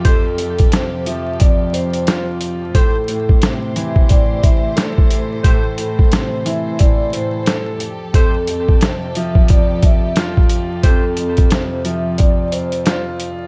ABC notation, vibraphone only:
X:1
M:4/4
L:1/16
Q:"Swing 16ths" 1/4=89
K:Flyd
V:1 name="Vibraphone"
A4 c2 e2 d2 c3 z3 | A4 c2 e2 d2 e2 z4 | A4 c2 e2 d2 c3 z3 | A4 z2 e2 d2 e2 z4 |
A4 c2 e2 d2 c3 z3 |]